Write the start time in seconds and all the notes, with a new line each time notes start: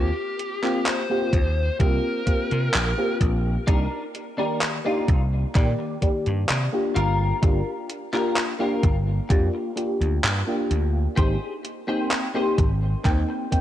Already playing: D#2 A#3 C4 F4 G4
0.39 closed hi-hat
0.62 A#3 C4 F4 G4, clap
0.86 C5, clap, closed hi-hat
1.09 A#3 C4 F4 G4
1.33 D#2, kick, closed hi-hat
1.79 C2 A#3 C4 F4 G4 A#4, kick, closed hi-hat
2.26 A#3 C4 F4 G4, kick, closed hi-hat
2.51 C3, closed hi-hat
2.74 A#1, clap, closed hi-hat
2.97 A#3 C4 F4 G4
3.21 A#1, kick, closed hi-hat
3.67 C2 A#3 D4 D#4 G4 A#4, kick, closed hi-hat
4.15 closed hi-hat
4.38 D#3 A#3 D4 D#4 G4 A#4 D5
4.61 clap, closed hi-hat
4.85 A#3 D4 D#4 F4 G4
5.08 C2, kick, closed hi-hat
5.55 A#2 D#3 A#3 G4 D5, muted clean electric guitar stroke, kick, clap, closed hi-hat
5.79 muted clean electric guitar stroke
6.01 D#3 A#3 G4 D5, kick, closed hi-hat
6.26 G2, closed hi-hat
6.49 C3, clap, closed hi-hat
6.72 A#3 D4 F4 G4
6.95 G1 F4 G4 A#4, closed hi-hat
7.42 G1 A#3 D4 F4 G4, kick, closed hi-hat
7.90 closed hi-hat
8.13 A#3 D4 F4 G4 A#4, clap
8.36 clap, closed hi-hat
8.59 A#3 D4 F4 G4 A#4
8.83 G1, kick, closed hi-hat
9.29 F2 A#3 D4 F4 G4, muted clean electric guitar stroke, kick, closed hi-hat
9.54 muted clean electric guitar stroke
9.76 A#3 D4 F4 G4, closed hi-hat
10.01 D2, closed hi-hat
10.24 G2, clap, closed hi-hat
10.47 A#3 D4 F4 G4
10.71 D2, closed hi-hat
11.16 G#1 A#3 C4 D#4 G4 G#4 C5, kick, closed hi-hat
11.65 closed hi-hat
11.87 A#3 C4 D#4 G4 G#4 C5 G5
12.11 clap, closed hi-hat
12.34 A#3 C4 D#4 G4 G#4 C5
12.58 G#1, kick, closed hi-hat
13.04 D#2 A#3 C4 D#4 G5, muted clean electric guitar stroke, kick, clap, closed hi-hat
13.29 muted clean electric guitar stroke
13.51 A#3 C4 D#4 G5, kick, closed hi-hat